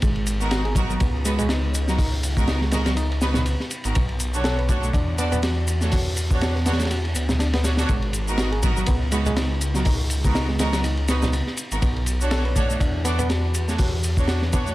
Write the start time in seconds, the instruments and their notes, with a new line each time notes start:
0.02 detuned saw bass G#1, reed electric piano G#3, kick, ride, shaker
0.16 ride
0.27 ride, shaker
0.40 string section B3 D#4 F#4 A#4, shaker
0.51 reed electric piano F#4, snare, ride, shaker
0.65 reed electric piano G#4, ride
0.75 reed electric piano F#3, string section B3 D#4 F#4 A#4, kick, ride, high conga, shaker
0.90 reed electric piano F#3, shaker
1.00 detuned saw bass C#2, reed electric piano B3, kick, ride, shaker
1.25 reed electric piano G#3, string section B3 D#4 F#4 B4, ride, shaker
1.38 reed electric piano G#3, ride, low conga, shaker
1.49 reed electric piano D#4, snare, ride, shaker
1.74 ride, shaker
1.88 reed electric piano F#3, string section B3 D#4 F#4 A#4, snare, shaker
1.98 reed electric piano D#4, kick, open hi-hat, shaker
2.23 ride, shaker
2.37 reed electric piano G#3, string section B3 D#4 F#4 A#4, kick, shaker
2.47 reed electric piano D#4, snare, ride, shaker
2.61 reed electric piano G#3, snare
2.71 reed electric piano G#3, string section B3 D#4 F#4 A#4, snare, ride, high conga, shaker
2.86 reed electric piano F#3, snare, ride, shaker
2.97 reed electric piano D#4, ride, shaker
3.12 ride
3.21 string section B3 D#4 F#4 B4, snare, ride, shaker
3.34 snare, low conga, shaker
3.46 ride, shaker
3.60 snare
3.71 ride, shaker
3.84 detuned saw bass G#1, string section B3 D#4 F#4 A#4, ride, shaker
3.95 detuned saw bass B1, reed electric piano B3, kick, ride, shaker
4.09 ride
4.20 ride, shaker
4.34 string section D4 F#4 A4 C#5, shaker
4.44 reed electric piano A4, snare, ride, shaker
4.58 reed electric piano B4, ride
4.69 reed electric piano A3, string section D4 F#4 A4 C#5, kick, ride, high conga, shaker
4.83 reed electric piano A3, shaker
4.93 detuned saw bass E2, reed electric piano D4, kick, ride, shaker
5.18 reed electric piano B3, string section D4 F#4 A4 D5, ride, shaker
5.32 reed electric piano B3, ride, low conga, shaker
5.43 reed electric piano F#4, snare, ride, shaker
5.68 ride, shaker
5.81 reed electric piano A3, string section D4 F#4 A4 C#5, snare, shaker
5.92 reed electric piano F#4, kick, open hi-hat, shaker
6.06 high conga
6.17 ride, shaker
6.31 reed electric piano B3, string section D4 F#4 A4 C#5, kick, shaker
6.41 reed electric piano F#4, snare, ride, shaker
6.55 reed electric piano B3, snare
6.66 reed electric piano B3, string section D4 F#4 A4 C#5, snare, ride, high conga, shaker
6.73 snare, ride
6.79 reed electric piano A3, snare, ride, shaker
6.85 snare, ride
6.91 reed electric piano F#4, ride, shaker
7.05 ride
7.15 detuned saw bass D2, reed electric piano B3, ride, shaker
7.29 snare, low conga, shaker
7.39 reed electric piano D4, snare, ride, shaker
7.53 reed electric piano B3, snare, ride
7.64 string section D4 F#4 A4 C#5, snare, ride, shaker
7.77 string section D4 F#4 A4 C#5, snare, ride, shaker
7.89 detuned saw bass G#1, reed electric piano G#3, kick, ride, shaker
8.02 ride
8.13 ride, shaker
8.27 string section B3 D#4 F#4 A#4, shaker
8.38 reed electric piano F#4, snare, ride, shaker
8.52 reed electric piano G#4, ride
8.63 reed electric piano F#3, string section B3 D#4 F#4 A#4, kick, ride, high conga, shaker
8.77 reed electric piano F#3, shaker
8.86 detuned saw bass C#2, reed electric piano B3, kick, ride, shaker
9.12 reed electric piano G#3, string section B3 D#4 F#4 B4, ride, shaker
9.26 reed electric piano G#3, ride, low conga, shaker
9.37 reed electric piano D#4, snare, ride, shaker
9.61 ride, shaker
9.74 reed electric piano F#3, string section B3 D#4 F#4 A#4, snare, shaker
9.85 reed electric piano D#4, kick, open hi-hat, shaker
10.10 ride, shaker
10.24 reed electric piano G#3, string section B3 D#4 F#4 A#4, kick, shaker
10.35 reed electric piano D#4, snare, ride, shaker
10.48 reed electric piano G#3, snare
10.59 reed electric piano G#3, string section B3 D#4 F#4 A#4, snare, ride, high conga, shaker
10.73 reed electric piano F#3, snare, ride, shaker
10.84 reed electric piano D#4, ride, shaker
10.97 ride
11.08 string section B3 D#4 F#4 B4, snare, ride, shaker
11.22 snare, low conga, shaker
11.33 ride, shaker
11.47 snare
11.57 ride, shaker
11.71 detuned saw bass G#1, string section B3 D#4 F#4 A#4, ride, shaker
11.82 detuned saw bass B1, reed electric piano B3, kick, ride, shaker
11.96 ride
12.06 ride, shaker
12.21 string section D4 F#4 A4 C#5, shaker
12.31 reed electric piano A4, snare, ride, shaker
12.45 reed electric piano B4, ride
12.56 reed electric piano A3, string section D4 F#4 A4 C#5, kick, ride, high conga, shaker
12.70 reed electric piano A3, shaker
12.80 detuned saw bass E2, reed electric piano D4, kick, ride, shaker
13.05 reed electric piano B3, string section D4 F#4 A4 D5, ride, shaker
13.19 reed electric piano B3, ride, low conga, shaker
13.30 reed electric piano F#4, snare, ride, shaker
13.54 ride, shaker
13.68 reed electric piano A3, string section D4 F#4 A4 C#5, snare, shaker
13.78 reed electric piano F#4, kick, open hi-hat, shaker
14.03 ride, shaker
14.17 reed electric piano B3, string section D4 F#4 A4 C#5, kick, shaker
14.28 reed electric piano F#4, snare, ride, shaker
14.42 reed electric piano B3, snare
14.53 reed electric piano B3, string section D4 F#4 A4 C#5, kick, ride, high conga, shaker
14.67 reed electric piano A3, shaker